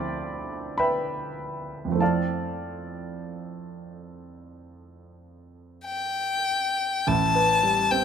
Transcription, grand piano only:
Already playing: D2 F3 A3 C4 E4 A4 C5 D5 F5 G5 A5 B5 C6 D6
0.78 B4 E5 G5 B5
1.85 F2 F3
1.92 A3 C4
1.98 E4 A4 F5 A5
2.02 D5
7.07 A1 A2
7.35 B4
7.63 G3
7.92 C4

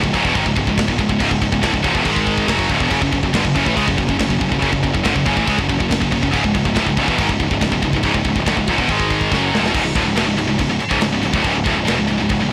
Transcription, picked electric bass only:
0.03 C#1
0.14 C#1
0.25 E1
0.35 G#1
0.46 C#1
0.56 C#1
0.67 C#1
0.78 C#1
0.88 C#1
0.99 C#1
1.09 C#1
1.20 C#1
1.31 C#1
1.41 C#1
1.52 C#1
1.62 D1
1.73 C#1
1.84 C#1
1.94 E1
2.05 G#1
2.48 F#1
2.69 C#1
2.80 E1
2.91 F#1
3.01 F#1
3.12 F#1
3.23 F#1
3.33 G1
3.44 F#1
3.56 F#1
3.66 A1
3.77 C#2
3.88 F#1
3.98 F#1
4.09 F#1
4.20 F#1
4.29 F#1
4.41 F#1
4.51 F#1
4.62 F#1
4.73 F#1
4.83 F#1
4.94 F#1
5.05 G1
5.16 F#1
5.26 F#1
5.37 A1
5.47 C#2
5.58 F#1
5.69 F#1
5.80 F#1
5.91 F#1
6.01 F#1
6.12 F#1
6.23 F#1
6.33 C#1
6.44 C#1
6.54 C#1
6.65 C#1
6.76 D1
6.86 C#1
6.97 C#1
7.08 E1
7.18 G#1
7.29 C#1
7.39 C#1
7.50 C#1
7.61 C#1
7.72 C#1
7.83 C#1
7.93 C#1
8.03 C#1
8.14 C#1
8.24 C#1
8.35 C#1
8.46 D1
8.57 C#1
8.68 C#1
8.78 E1
8.88 G#1
9.31 F#1
9.52 C#1
9.62 E1
9.74 C#1
9.83 C#1
9.95 D1
10.05 C#1
10.16 E1
10.26 C#1
10.36 C#1
10.47 C#1
10.59 C#1
10.69 C#1
10.80 muted picked electric bass stroke
10.91 C#1
11.02 C#1
11.13 C#1
11.23 C#1
11.33 D1
11.44 C#1
11.55 C#1
11.65 D1
11.76 C#1
11.89 E1
11.99 C#1
12.10 C#1
12.21 C#1
12.30 C#1
12.42 C#1

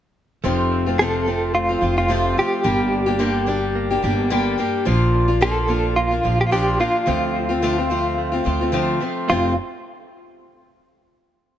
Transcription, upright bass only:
0.44 F1
1.82 F1
2.65 G1
4.04 G1
4.87 A#1
6.25 A#1
7.08 D2
8.46 D2
9.30 F1

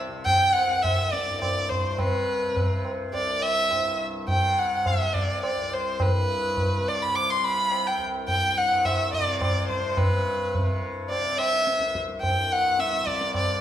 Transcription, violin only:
0.26 G5
0.53 F#5
0.82 E5
1.12 D5
1.42 D5
1.69 C5
1.91 C5
1.99 B4
3.13 D5
3.42 E5
4.28 G5
4.58 F#5
4.87 E5
5.14 D5
5.43 D5
5.73 C5
6.02 B4
6.88 D5
7.02 B5
7.15 D6
7.30 C6
7.43 B5
7.87 G5
8.29 G5
8.57 F#5
8.85 E5
9.13 D5
9.41 D5
9.68 C5
9.97 B4
11.09 D5
11.38 E5
12.21 G5
12.51 F#5
12.80 E5
13.07 D5
13.36 D5

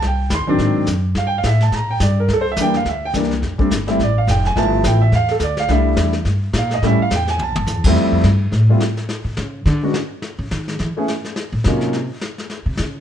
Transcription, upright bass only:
0.01 C2
0.30 D#2
0.39 C2
0.49 A1
0.58 G#2
0.86 F#2
1.15 G2
1.44 A2
1.72 A#2
2.00 G2
2.28 C2
2.56 E2
2.85 D2
3.13 C2
3.42 F1
3.59 muted upright bass stroke
3.70 G1
3.99 A1
4.27 F1
4.55 G1
4.84 A1
5.12 E2
5.40 D2
5.68 C2
5.96 E2
6.25 G2
6.53 A#2
6.82 A2
6.99 muted upright bass stroke
7.10 E2
7.38 C2
7.48 A#1
7.58 G1
7.66 E2
8.12 F2
8.23 G2
8.52 A2
9.24 B2
9.37 C#3
9.65 D3
10.39 C#3
10.51 D#3
10.79 E3
11.52 A#2
11.65 C3
12.66 C3
12.79 C#3

